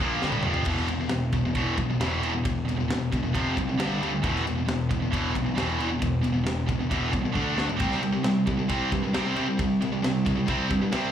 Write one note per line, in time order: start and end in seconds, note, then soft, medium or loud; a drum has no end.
0.00 0.21 A#1 medium
0.00 0.22 A#2 medium
0.00 0.22 F3 loud
0.00 0.23 A#3 loud
0.22 0.43 G1 medium
0.22 0.43 G2 medium
0.22 0.44 D3 medium
0.22 0.44 G3 loud
0.22 snare medium
0.32 high tom medium
0.43 0.66 F1 medium
0.43 0.66 F2 medium
0.43 0.66 C3 medium
0.43 0.67 F3 loud
0.43 mid tom loud
0.54 floor tom medium
0.65 0.87 E1 medium
0.65 0.87 E2 medium
0.65 0.88 B2 medium
0.65 0.88 E3 medium
0.65 kick loud
0.65 crash loud
0.77 snare soft
0.88 1.09 E1 medium
0.88 0.99 E2 medium
0.88 0.99 B2 medium
0.88 ride medium
1.01 1.10 E2 medium
1.01 1.10 B2 medium
1.09 1.31 E1 loud
1.09 1.31 E2 medium
1.09 1.31 B2 medium
1.09 snare loud
1.09 ride medium
1.32 1.53 E1 medium
1.32 1.45 E2 medium
1.32 1.44 B2 medium
1.32 kick medium
1.32 ride medium
1.45 1.55 E2 medium
1.45 1.56 B2 medium
1.55 1.76 E1 medium
1.55 1.77 E2 medium
1.55 1.77 B2 loud
1.55 1.78 E3 loud
1.55 kick medium
1.55 ride medium
1.78 1.98 B1 medium
1.78 1.89 E2 medium
1.78 1.89 B2 medium
1.78 kick medium
1.78 ride medium
1.90 1.99 E2 medium
1.90 2.00 B2 medium
1.99 2.20 E1 medium
1.99 2.21 E2 medium
1.99 2.22 B2 medium
1.99 2.22 E3 loud
1.99 snare loud
1.99 ride medium
2.22 2.43 E2 medium
2.22 2.32 E2 medium
2.22 2.33 B2 loud
2.22 2.33 E3 loud
2.22 ride medium
2.35 2.44 E2 medium
2.35 2.45 B2 medium
2.45 2.66 E1 loud
2.45 2.65 E2 medium
2.45 2.65 B2 medium
2.45 kick loud
2.45 ride loud
2.67 2.88 E1 medium
2.67 2.79 E2 medium
2.67 2.79 B2 medium
2.67 ride medium
2.80 2.90 E2 medium
2.80 2.90 B2 medium
2.89 3.10 E1 loud
2.89 3.10 E2 medium
2.89 3.11 B2 medium
2.89 snare loud
2.89 ride medium
3.12 3.33 E1 medium
3.12 3.24 E2 medium
3.12 3.23 B2 medium
3.12 kick medium
3.12 ride medium
3.25 3.34 E2 medium
3.25 3.35 B2 medium
3.35 3.55 F1 medium
3.35 3.55 F2 medium
3.35 3.56 C3 medium
3.35 3.56 F3 loud
3.35 kick medium
3.35 ride medium
3.57 3.77 C2 medium
3.57 3.69 F2 medium
3.57 3.68 C3 medium
3.57 kick medium
3.57 ride medium
3.69 3.79 F2 medium
3.69 3.79 C3 medium
3.78 3.99 G1 medium
3.78 4.00 G2 medium
3.78 4.00 D3 medium
3.78 4.01 G3 loud
3.78 snare loud
3.78 ride loud
4.00 4.21 D2 medium
4.00 4.11 G2 medium
4.00 4.12 D3 medium
4.00 4.12 G3 loud
4.00 ride medium
4.13 4.23 G2 medium
4.13 4.24 D3 medium
4.23 4.44 E1 loud
4.23 4.44 E2 medium
4.23 4.45 B2 loud
4.23 4.45 E3 loud
4.23 kick loud
4.23 ride medium
4.36 snare soft
4.45 4.66 E1 medium
4.45 4.57 E2 medium
4.45 4.56 B2 medium
4.45 ride medium
4.57 4.68 E2 medium
4.57 4.68 B2 medium
4.67 4.88 E1 loud
4.67 4.88 E2 medium
4.67 4.89 B2 medium
4.67 snare medium
4.67 ride medium
4.91 5.11 E1 medium
4.91 5.01 E2 medium
4.91 5.01 B2 medium
4.91 kick medium
4.91 ride medium
5.02 5.11 E2 medium
5.02 5.12 B2 medium
5.13 5.34 E1 medium
5.13 5.34 E2 loud
5.13 5.34 B2 medium
5.13 5.34 E3 loud
5.13 kick medium
5.13 ride loud
5.35 5.55 B1 medium
5.35 5.45 E2 medium
5.35 5.45 B2 medium
5.35 kick medium
5.35 ride medium
5.46 5.56 E2 medium
5.46 5.57 B2 medium
5.56 5.77 E1 medium
5.56 5.78 E2 medium
5.56 5.78 B2 loud
5.56 5.79 E3 loud
5.56 snare loud
5.56 ride medium
5.79 6.00 E2 medium
5.79 5.89 E2 medium
5.79 5.89 B2 medium
5.79 5.90 E3 medium
5.79 ride medium
5.90 6.01 E2 medium
5.90 6.01 B2 medium
6.02 6.23 E1 loud
6.02 6.22 E2 medium
6.02 6.22 B2 medium
6.02 kick loud
6.02 ride medium
6.23 6.45 E1 medium
6.23 6.33 E2 medium
6.23 6.33 B2 medium
6.23 ride medium
6.34 6.45 E2 medium
6.34 6.45 B2 medium
6.46 6.67 E1 medium
6.46 6.66 E2 medium
6.46 6.66 B2 medium
6.46 snare loud
6.46 ride medium
6.68 6.89 E1 medium
6.68 6.79 E2 medium
6.68 6.79 B2 medium
6.68 kick medium
6.68 ride medium
6.80 6.90 E2 medium
6.80 6.90 B2 medium
6.91 7.12 E1 medium
6.91 7.12 E2 medium
6.91 7.11 B2 loud
6.91 7.13 E3 loud
6.91 kick medium
6.91 ride loud
7.12 7.34 C2 medium
7.12 7.24 E2 medium
7.12 7.24 B2 medium
7.12 kick medium
7.12 ride medium
7.25 7.36 E2 medium
7.25 7.35 B2 medium
7.35 7.56 D2 medium
7.35 7.57 D3 medium
7.35 7.57 A3 medium
7.35 7.57 D4 medium
7.35 kick medium
7.54 7.78 D2 medium
7.54 7.66 D3 medium
7.54 7.66 D4 loud
7.54 snare medium
7.58 7.68 D3 medium
7.58 7.68 A3 loud
7.58 7.69 D4 loud
7.69 7.79 D3 medium
7.69 7.80 A3 medium
7.69 floor tom medium
7.77 8.01 C2 loud
7.77 8.01 C3 medium
7.77 7.99 G3 loud
7.77 kick loud
7.77 ride loud
7.81 8.01 G3 loud
7.81 8.02 C4 loud
7.91 snare soft
8.02 8.23 C2 medium
8.02 8.12 C3 medium
8.02 8.11 G3 medium
8.02 ride medium
8.13 8.23 C3 medium
8.13 8.24 G3 medium
8.24 8.45 C2 medium
8.24 8.45 C3 medium
8.24 8.45 G3 medium
8.24 snare loud
8.24 ride medium
8.47 8.68 C2 medium
8.47 8.58 C3 medium
8.47 8.57 G3 medium
8.47 kick medium
8.47 ride medium
8.59 8.68 C3 medium
8.59 8.68 G3 medium
8.69 8.90 C2 medium
8.69 8.91 C3 medium
8.69 8.91 G3 loud
8.69 8.91 C4 medium
8.69 kick medium
8.69 ride medium
8.92 9.13 G2 medium
8.92 9.02 C3 medium
8.92 9.02 G3 medium
8.92 kick medium
8.92 ride medium
9.03 9.13 C3 medium
9.03 9.14 G3 medium
9.13 9.35 C2 medium
9.13 9.35 C3 medium
9.13 9.35 G3 medium
9.13 9.36 C4 medium
9.13 snare loud
9.13 ride medium
9.36 9.57 C3 medium
9.36 9.46 C3 medium
9.36 9.46 G3 loud
9.36 9.47 C4 medium
9.36 ride medium
9.47 9.58 C3 medium
9.47 9.59 G3 medium
9.59 9.80 C2 loud
9.59 9.79 C3 medium
9.59 9.80 G3 medium
9.59 kick loud
9.59 ride loud
9.81 10.02 C2 medium
9.81 9.92 C3 medium
9.81 9.91 G3 medium
9.81 ride medium
9.93 10.01 C3 medium
9.93 10.01 G3 medium
10.02 10.24 C2 medium
10.02 10.23 C3 medium
10.02 10.23 G3 medium
10.02 snare loud
10.02 ride medium
10.25 10.47 C2 medium
10.25 10.35 C3 medium
10.25 10.35 G3 medium
10.25 kick medium
10.25 ride medium
10.36 10.45 C3 medium
10.36 10.45 G3 medium
10.46 10.69 C2 medium
10.46 10.68 C3 medium
10.46 10.69 G3 loud
10.46 10.69 C4 loud
10.46 kick medium
10.46 ride medium
10.70 10.92 G2 medium
10.70 10.82 C3 medium
10.70 10.81 G3 medium
10.70 kick medium
10.70 ride medium
10.82 10.91 C3 medium
10.82 10.92 G3 medium
10.92 11.12 C2 medium
10.92 11.12 C3 medium
10.92 11.12 G3 loud
10.92 11.12 C4 loud
10.92 snare loud
10.92 ride loud